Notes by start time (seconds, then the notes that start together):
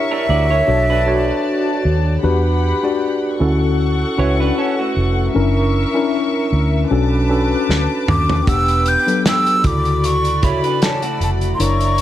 Already playing: D4 E4 G4 A#4 C#5 E5 C#6
0.11 D4 A#4
0.29 D2 F#4 D5
0.51 E4 C#5
0.67 B1 D4 F#4 A4 C#5 D5 A5
0.90 D4 B4
1.06 D4 F#4 A4 C#5
1.85 D#2
2.23 E2 D4 F#4 G4 B4 F#5 B5
2.83 D4 F#4 G4 D5
3.40 D2 C#4 E4 F#4 A4 F#5 C#6
4.18 C#2 C#4 E4 F#4 B4 C#5
4.40 D4 B4
4.58 C#4 A4
4.79 A3 F#4
4.97 F1
5.34 F#1 C#4 D4 E4 A#4 E5 C#6
5.94 C#4 D4 E4 A#4
6.53 D2
6.91 B1 C#4 D4 F#4 A4 B4 A5 D6
7.29 C#4 D4 F#4 A4
7.69 D2, snare
8.08 D#2 D6, mid tom
8.29 floor tom
8.47 E1 B3 D4 G4 B4 F#5 G5 D6 E6, kick, closed hi-hat
8.68 closed hi-hat
8.86 G6, closed hi-hat
9.07 F#3 B3 D4 A4, closed hi-hat
9.26 E6, snare, closed hi-hat
9.47 closed hi-hat
9.64 D2 C#3 E4 F#4 A4 D5 B5 D6, kick, closed hi-hat
9.85 closed hi-hat
10.04 C#6, closed hi-hat
10.25 closed hi-hat
10.42 C#3 E4 F#4 A4 C#5 B5, kick, closed hi-hat
10.64 D4 B4, closed hi-hat
10.82 C#4 A4 A5, snare, closed hi-hat
11.02 A3 F#4, closed hi-hat
11.20 F1 A5, closed hi-hat
11.41 closed hi-hat
11.55 C6
11.59 F#1 D4 E4 A#4 C#5 D5 A#5 C#6, closed hi-hat
11.80 closed hi-hat
11.98 closed hi-hat